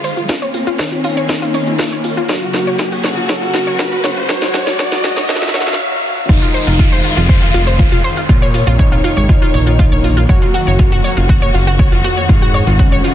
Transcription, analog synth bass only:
6.29 6.40 F1 loud
6.67 7.01 F1 medium
7.17 7.51 F1 medium
7.54 7.89 F1 loud
7.92 8.02 F1 medium
8.29 8.64 A#2 medium
8.67 9.01 A#1 medium
9.17 9.27 G#1 medium
9.54 9.89 A#1 medium
9.92 10.26 A#1 medium
10.67 11.01 F#1 medium
11.17 11.51 F#1 medium
11.54 11.89 F#1 loud
11.92 12.02 F#1 medium
12.29 12.64 G#2 medium
12.67 13.01 G#1 medium

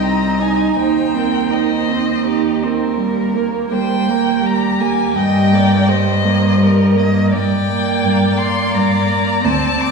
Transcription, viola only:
0.02 0.40 C4 soft
0.39 0.77 D#4 soft
0.78 1.16 D#4 soft
1.15 1.52 C4 soft
1.51 1.90 D#4 soft
1.88 2.26 C4 soft
2.27 2.64 D#4 soft
2.63 2.99 C4 soft
3.00 3.37 G3 soft
3.35 3.73 A#3 soft
3.71 4.10 G3 soft
4.08 4.44 A#3 soft
4.44 4.82 G3 soft
4.81 5.16 A#3 soft
5.17 5.54 G3 soft
5.53 5.90 A#3 soft
5.88 6.26 G3 soft
6.24 6.60 A#3 soft
6.60 6.97 G3 soft
6.96 7.32 A#3 soft
7.69 8.37 A#3 soft
8.38 9.08 A#3 soft
9.08 9.43 A#3 soft
9.43 9.79 C4 soft
9.80 9.91 C4 soft

